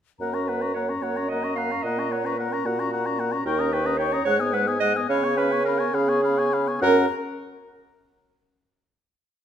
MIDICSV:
0, 0, Header, 1, 6, 480
1, 0, Start_track
1, 0, Key_signature, 6, "major"
1, 0, Tempo, 543478
1, 183, Time_signature, 6, 3, 24, 8
1, 4500, Tempo, 573614
1, 8137, End_track
2, 0, Start_track
2, 0, Title_t, "Flute"
2, 0, Program_c, 0, 73
2, 174, Note_on_c, 0, 82, 38
2, 300, Note_on_c, 0, 85, 36
2, 314, Note_off_c, 0, 82, 0
2, 431, Note_on_c, 0, 82, 36
2, 444, Note_off_c, 0, 85, 0
2, 546, Note_on_c, 0, 85, 35
2, 559, Note_off_c, 0, 82, 0
2, 665, Note_off_c, 0, 85, 0
2, 670, Note_on_c, 0, 82, 36
2, 785, Note_on_c, 0, 85, 37
2, 798, Note_off_c, 0, 82, 0
2, 912, Note_on_c, 0, 82, 35
2, 925, Note_off_c, 0, 85, 0
2, 1033, Note_on_c, 0, 85, 35
2, 1046, Note_off_c, 0, 82, 0
2, 1149, Note_off_c, 0, 85, 0
2, 1155, Note_on_c, 0, 82, 43
2, 1273, Note_on_c, 0, 85, 37
2, 1286, Note_off_c, 0, 82, 0
2, 1396, Note_on_c, 0, 82, 37
2, 1409, Note_off_c, 0, 85, 0
2, 1515, Note_on_c, 0, 85, 38
2, 1528, Note_off_c, 0, 82, 0
2, 1631, Note_off_c, 0, 85, 0
2, 1636, Note_on_c, 0, 82, 39
2, 1754, Note_on_c, 0, 85, 42
2, 1767, Note_off_c, 0, 82, 0
2, 1876, Note_on_c, 0, 82, 37
2, 1889, Note_off_c, 0, 85, 0
2, 1999, Note_on_c, 0, 85, 43
2, 2012, Note_off_c, 0, 82, 0
2, 2109, Note_off_c, 0, 85, 0
2, 2114, Note_on_c, 0, 82, 43
2, 2228, Note_on_c, 0, 85, 41
2, 2241, Note_off_c, 0, 82, 0
2, 2352, Note_on_c, 0, 82, 45
2, 2365, Note_off_c, 0, 85, 0
2, 2468, Note_on_c, 0, 85, 51
2, 2481, Note_off_c, 0, 82, 0
2, 2577, Note_off_c, 0, 85, 0
2, 2583, Note_on_c, 0, 82, 49
2, 2703, Note_on_c, 0, 85, 42
2, 2716, Note_off_c, 0, 82, 0
2, 2820, Note_on_c, 0, 82, 49
2, 2833, Note_off_c, 0, 85, 0
2, 2933, Note_on_c, 0, 85, 45
2, 2946, Note_off_c, 0, 82, 0
2, 3044, Note_off_c, 0, 85, 0
2, 3049, Note_on_c, 0, 85, 52
2, 3170, Note_on_c, 0, 87, 45
2, 3183, Note_off_c, 0, 85, 0
2, 3292, Note_on_c, 0, 85, 49
2, 3306, Note_off_c, 0, 87, 0
2, 3410, Note_on_c, 0, 87, 49
2, 3423, Note_off_c, 0, 85, 0
2, 3528, Note_off_c, 0, 87, 0
2, 3533, Note_on_c, 0, 85, 47
2, 3657, Note_on_c, 0, 87, 50
2, 3670, Note_off_c, 0, 85, 0
2, 3760, Note_off_c, 0, 87, 0
2, 3766, Note_on_c, 0, 90, 63
2, 3889, Note_on_c, 0, 87, 58
2, 3902, Note_off_c, 0, 90, 0
2, 4016, Note_on_c, 0, 90, 60
2, 4029, Note_off_c, 0, 87, 0
2, 4128, Note_on_c, 0, 87, 51
2, 4142, Note_off_c, 0, 90, 0
2, 4246, Note_off_c, 0, 87, 0
2, 4251, Note_on_c, 0, 90, 59
2, 4386, Note_on_c, 0, 87, 52
2, 4399, Note_off_c, 0, 90, 0
2, 4505, Note_off_c, 0, 87, 0
2, 4512, Note_on_c, 0, 83, 57
2, 4627, Note_on_c, 0, 85, 52
2, 4640, Note_off_c, 0, 83, 0
2, 4742, Note_on_c, 0, 83, 54
2, 4754, Note_off_c, 0, 85, 0
2, 4858, Note_on_c, 0, 85, 55
2, 4870, Note_off_c, 0, 83, 0
2, 4972, Note_off_c, 0, 85, 0
2, 4978, Note_on_c, 0, 83, 58
2, 5093, Note_on_c, 0, 85, 51
2, 5105, Note_off_c, 0, 83, 0
2, 5213, Note_on_c, 0, 83, 54
2, 5226, Note_off_c, 0, 85, 0
2, 5333, Note_on_c, 0, 85, 61
2, 5346, Note_off_c, 0, 83, 0
2, 5452, Note_off_c, 0, 85, 0
2, 5458, Note_on_c, 0, 83, 53
2, 5576, Note_on_c, 0, 85, 51
2, 5588, Note_off_c, 0, 83, 0
2, 5705, Note_on_c, 0, 83, 53
2, 5717, Note_off_c, 0, 85, 0
2, 5825, Note_on_c, 0, 85, 48
2, 5837, Note_off_c, 0, 83, 0
2, 5946, Note_off_c, 0, 85, 0
2, 5953, Note_on_c, 0, 82, 78
2, 6218, Note_off_c, 0, 82, 0
2, 8137, End_track
3, 0, Start_track
3, 0, Title_t, "Oboe"
3, 0, Program_c, 1, 68
3, 186, Note_on_c, 1, 78, 42
3, 302, Note_on_c, 1, 82, 35
3, 315, Note_off_c, 1, 78, 0
3, 430, Note_on_c, 1, 78, 35
3, 443, Note_off_c, 1, 82, 0
3, 543, Note_on_c, 1, 82, 30
3, 556, Note_off_c, 1, 78, 0
3, 665, Note_off_c, 1, 82, 0
3, 670, Note_on_c, 1, 78, 37
3, 793, Note_on_c, 1, 82, 37
3, 806, Note_off_c, 1, 78, 0
3, 908, Note_on_c, 1, 78, 42
3, 922, Note_off_c, 1, 82, 0
3, 1032, Note_on_c, 1, 82, 37
3, 1046, Note_off_c, 1, 78, 0
3, 1152, Note_off_c, 1, 82, 0
3, 1159, Note_on_c, 1, 78, 39
3, 1266, Note_on_c, 1, 82, 36
3, 1279, Note_off_c, 1, 78, 0
3, 1393, Note_on_c, 1, 78, 41
3, 1407, Note_off_c, 1, 82, 0
3, 1514, Note_on_c, 1, 82, 34
3, 1527, Note_off_c, 1, 78, 0
3, 1627, Note_off_c, 1, 82, 0
3, 1632, Note_on_c, 1, 78, 48
3, 1760, Note_on_c, 1, 82, 41
3, 1773, Note_off_c, 1, 78, 0
3, 1875, Note_on_c, 1, 78, 43
3, 1888, Note_off_c, 1, 82, 0
3, 1992, Note_on_c, 1, 82, 40
3, 2005, Note_off_c, 1, 78, 0
3, 2107, Note_off_c, 1, 82, 0
3, 2113, Note_on_c, 1, 78, 45
3, 2235, Note_on_c, 1, 82, 44
3, 2248, Note_off_c, 1, 78, 0
3, 2347, Note_on_c, 1, 78, 48
3, 2360, Note_off_c, 1, 82, 0
3, 2470, Note_on_c, 1, 82, 46
3, 2483, Note_off_c, 1, 78, 0
3, 2582, Note_off_c, 1, 82, 0
3, 2587, Note_on_c, 1, 78, 43
3, 2705, Note_on_c, 1, 82, 42
3, 2719, Note_off_c, 1, 78, 0
3, 2823, Note_on_c, 1, 78, 46
3, 2837, Note_off_c, 1, 82, 0
3, 2934, Note_on_c, 1, 82, 44
3, 2947, Note_off_c, 1, 78, 0
3, 3051, Note_off_c, 1, 82, 0
3, 3056, Note_on_c, 1, 79, 59
3, 3185, Note_on_c, 1, 82, 52
3, 3199, Note_off_c, 1, 79, 0
3, 3296, Note_on_c, 1, 79, 51
3, 3310, Note_off_c, 1, 82, 0
3, 3408, Note_on_c, 1, 82, 45
3, 3421, Note_off_c, 1, 79, 0
3, 3520, Note_off_c, 1, 82, 0
3, 3526, Note_on_c, 1, 79, 57
3, 3643, Note_on_c, 1, 82, 56
3, 3657, Note_off_c, 1, 79, 0
3, 3763, Note_off_c, 1, 82, 0
3, 3768, Note_on_c, 1, 78, 60
3, 3884, Note_on_c, 1, 80, 55
3, 3897, Note_off_c, 1, 78, 0
3, 4006, Note_on_c, 1, 78, 58
3, 4019, Note_off_c, 1, 80, 0
3, 4135, Note_on_c, 1, 80, 54
3, 4149, Note_off_c, 1, 78, 0
3, 4250, Note_off_c, 1, 80, 0
3, 4255, Note_on_c, 1, 78, 54
3, 4384, Note_on_c, 1, 80, 48
3, 4397, Note_off_c, 1, 78, 0
3, 4494, Note_off_c, 1, 80, 0
3, 4500, Note_on_c, 1, 77, 66
3, 4620, Note_on_c, 1, 80, 55
3, 4633, Note_off_c, 1, 77, 0
3, 4735, Note_on_c, 1, 77, 55
3, 4747, Note_off_c, 1, 80, 0
3, 4853, Note_on_c, 1, 80, 50
3, 4865, Note_off_c, 1, 77, 0
3, 4962, Note_off_c, 1, 80, 0
3, 4967, Note_on_c, 1, 77, 59
3, 5077, Note_on_c, 1, 80, 57
3, 5090, Note_off_c, 1, 77, 0
3, 5210, Note_on_c, 1, 77, 58
3, 5223, Note_off_c, 1, 80, 0
3, 5328, Note_on_c, 1, 80, 62
3, 5340, Note_off_c, 1, 77, 0
3, 5447, Note_off_c, 1, 80, 0
3, 5452, Note_on_c, 1, 77, 52
3, 5579, Note_on_c, 1, 80, 52
3, 5591, Note_off_c, 1, 77, 0
3, 5703, Note_on_c, 1, 77, 49
3, 5716, Note_off_c, 1, 80, 0
3, 5826, Note_on_c, 1, 80, 41
3, 5838, Note_off_c, 1, 77, 0
3, 5936, Note_off_c, 1, 80, 0
3, 5941, Note_on_c, 1, 78, 76
3, 6145, Note_off_c, 1, 78, 0
3, 8137, End_track
4, 0, Start_track
4, 0, Title_t, "Clarinet"
4, 0, Program_c, 2, 71
4, 182, Note_on_c, 2, 70, 54
4, 409, Note_on_c, 2, 71, 59
4, 422, Note_off_c, 2, 70, 0
4, 647, Note_off_c, 2, 71, 0
4, 652, Note_on_c, 2, 73, 60
4, 764, Note_off_c, 2, 73, 0
4, 888, Note_on_c, 2, 73, 63
4, 1135, Note_on_c, 2, 75, 70
4, 1148, Note_off_c, 2, 73, 0
4, 1368, Note_off_c, 2, 75, 0
4, 1373, Note_on_c, 2, 77, 72
4, 1612, Note_on_c, 2, 75, 73
4, 1626, Note_off_c, 2, 77, 0
4, 1865, Note_on_c, 2, 73, 64
4, 1878, Note_off_c, 2, 75, 0
4, 1990, Note_on_c, 2, 71, 66
4, 2003, Note_off_c, 2, 73, 0
4, 2100, Note_on_c, 2, 70, 74
4, 2113, Note_off_c, 2, 71, 0
4, 2337, Note_off_c, 2, 70, 0
4, 2342, Note_on_c, 2, 66, 73
4, 3040, Note_off_c, 2, 66, 0
4, 3050, Note_on_c, 2, 70, 83
4, 3285, Note_on_c, 2, 71, 80
4, 3299, Note_off_c, 2, 70, 0
4, 3515, Note_on_c, 2, 73, 80
4, 3528, Note_off_c, 2, 71, 0
4, 3748, Note_off_c, 2, 73, 0
4, 3754, Note_on_c, 2, 73, 96
4, 3866, Note_off_c, 2, 73, 0
4, 4002, Note_on_c, 2, 71, 71
4, 4114, Note_off_c, 2, 71, 0
4, 4241, Note_on_c, 2, 75, 98
4, 4355, Note_off_c, 2, 75, 0
4, 4500, Note_on_c, 2, 73, 93
4, 4725, Note_off_c, 2, 73, 0
4, 4730, Note_on_c, 2, 71, 86
4, 4962, Note_on_c, 2, 70, 82
4, 4975, Note_off_c, 2, 71, 0
4, 5204, Note_on_c, 2, 68, 83
4, 5217, Note_off_c, 2, 70, 0
4, 5941, Note_off_c, 2, 68, 0
4, 5946, Note_on_c, 2, 70, 96
4, 6148, Note_off_c, 2, 70, 0
4, 8137, End_track
5, 0, Start_track
5, 0, Title_t, "French horn"
5, 0, Program_c, 3, 60
5, 182, Note_on_c, 3, 58, 36
5, 302, Note_on_c, 3, 61, 36
5, 316, Note_off_c, 3, 58, 0
5, 428, Note_on_c, 3, 58, 39
5, 442, Note_off_c, 3, 61, 0
5, 543, Note_on_c, 3, 61, 34
5, 556, Note_off_c, 3, 58, 0
5, 662, Note_off_c, 3, 61, 0
5, 668, Note_on_c, 3, 58, 34
5, 791, Note_on_c, 3, 61, 35
5, 805, Note_off_c, 3, 58, 0
5, 904, Note_on_c, 3, 58, 38
5, 917, Note_off_c, 3, 61, 0
5, 1032, Note_on_c, 3, 61, 39
5, 1046, Note_off_c, 3, 58, 0
5, 1138, Note_off_c, 3, 61, 0
5, 1143, Note_on_c, 3, 58, 35
5, 1269, Note_on_c, 3, 61, 37
5, 1283, Note_off_c, 3, 58, 0
5, 1379, Note_on_c, 3, 58, 36
5, 1393, Note_off_c, 3, 61, 0
5, 1502, Note_on_c, 3, 61, 33
5, 1515, Note_off_c, 3, 58, 0
5, 1622, Note_off_c, 3, 61, 0
5, 1627, Note_on_c, 3, 58, 47
5, 1743, Note_on_c, 3, 61, 41
5, 1756, Note_off_c, 3, 58, 0
5, 1857, Note_on_c, 3, 58, 41
5, 1871, Note_off_c, 3, 61, 0
5, 1981, Note_on_c, 3, 61, 41
5, 1995, Note_off_c, 3, 58, 0
5, 2092, Note_off_c, 3, 61, 0
5, 2097, Note_on_c, 3, 58, 43
5, 2221, Note_on_c, 3, 61, 41
5, 2234, Note_off_c, 3, 58, 0
5, 2334, Note_on_c, 3, 58, 43
5, 2348, Note_off_c, 3, 61, 0
5, 2467, Note_on_c, 3, 61, 45
5, 2480, Note_off_c, 3, 58, 0
5, 2575, Note_off_c, 3, 61, 0
5, 2581, Note_on_c, 3, 58, 39
5, 2696, Note_on_c, 3, 61, 44
5, 2709, Note_off_c, 3, 58, 0
5, 2815, Note_on_c, 3, 58, 42
5, 2828, Note_off_c, 3, 61, 0
5, 2935, Note_on_c, 3, 61, 42
5, 2949, Note_off_c, 3, 58, 0
5, 3044, Note_off_c, 3, 61, 0
5, 3049, Note_on_c, 3, 63, 55
5, 3164, Note_on_c, 3, 61, 53
5, 3177, Note_off_c, 3, 63, 0
5, 3279, Note_on_c, 3, 63, 49
5, 3292, Note_off_c, 3, 61, 0
5, 3398, Note_on_c, 3, 61, 52
5, 3411, Note_off_c, 3, 63, 0
5, 3514, Note_off_c, 3, 61, 0
5, 3519, Note_on_c, 3, 63, 50
5, 3639, Note_on_c, 3, 61, 48
5, 3652, Note_off_c, 3, 63, 0
5, 3751, Note_off_c, 3, 61, 0
5, 3756, Note_on_c, 3, 56, 61
5, 3883, Note_on_c, 3, 59, 60
5, 3896, Note_off_c, 3, 56, 0
5, 3998, Note_on_c, 3, 56, 55
5, 4011, Note_off_c, 3, 59, 0
5, 4124, Note_on_c, 3, 59, 56
5, 4138, Note_off_c, 3, 56, 0
5, 4239, Note_off_c, 3, 59, 0
5, 4244, Note_on_c, 3, 56, 53
5, 4372, Note_on_c, 3, 59, 52
5, 4385, Note_off_c, 3, 56, 0
5, 4494, Note_off_c, 3, 59, 0
5, 4499, Note_on_c, 3, 61, 52
5, 4610, Note_on_c, 3, 59, 55
5, 4622, Note_off_c, 3, 61, 0
5, 4725, Note_on_c, 3, 61, 51
5, 4737, Note_off_c, 3, 59, 0
5, 4847, Note_on_c, 3, 59, 54
5, 4859, Note_off_c, 3, 61, 0
5, 4956, Note_off_c, 3, 59, 0
5, 4961, Note_on_c, 3, 61, 52
5, 5079, Note_on_c, 3, 59, 51
5, 5092, Note_off_c, 3, 61, 0
5, 5199, Note_on_c, 3, 61, 55
5, 5212, Note_off_c, 3, 59, 0
5, 5320, Note_on_c, 3, 59, 61
5, 5333, Note_off_c, 3, 61, 0
5, 5440, Note_off_c, 3, 59, 0
5, 5445, Note_on_c, 3, 61, 48
5, 5568, Note_on_c, 3, 59, 51
5, 5581, Note_off_c, 3, 61, 0
5, 5697, Note_on_c, 3, 61, 52
5, 5709, Note_off_c, 3, 59, 0
5, 5821, Note_on_c, 3, 59, 45
5, 5834, Note_off_c, 3, 61, 0
5, 5930, Note_off_c, 3, 59, 0
5, 5935, Note_on_c, 3, 61, 68
5, 6142, Note_off_c, 3, 61, 0
5, 8137, End_track
6, 0, Start_track
6, 0, Title_t, "Bassoon"
6, 0, Program_c, 4, 70
6, 180, Note_on_c, 4, 42, 49
6, 823, Note_off_c, 4, 42, 0
6, 902, Note_on_c, 4, 42, 46
6, 1542, Note_off_c, 4, 42, 0
6, 1621, Note_on_c, 4, 46, 56
6, 2256, Note_off_c, 4, 46, 0
6, 2345, Note_on_c, 4, 46, 55
6, 2972, Note_off_c, 4, 46, 0
6, 3053, Note_on_c, 4, 39, 68
6, 3680, Note_off_c, 4, 39, 0
6, 3766, Note_on_c, 4, 44, 67
6, 4413, Note_off_c, 4, 44, 0
6, 4498, Note_on_c, 4, 49, 72
6, 5121, Note_off_c, 4, 49, 0
6, 5205, Note_on_c, 4, 49, 69
6, 5858, Note_off_c, 4, 49, 0
6, 5944, Note_on_c, 4, 42, 85
6, 6147, Note_off_c, 4, 42, 0
6, 8137, End_track
0, 0, End_of_file